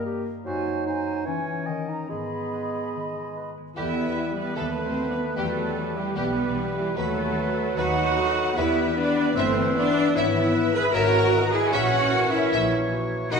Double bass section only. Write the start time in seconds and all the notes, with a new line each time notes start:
3.77 E2
4.57 D#2
5.36 E2
6.16 B1
6.97 D#2
7.77 D#2
8.58 E2
9.37 G1
10.15 G#1
10.95 G#1
11.73 A#1
12.51 A#1
13.32 B1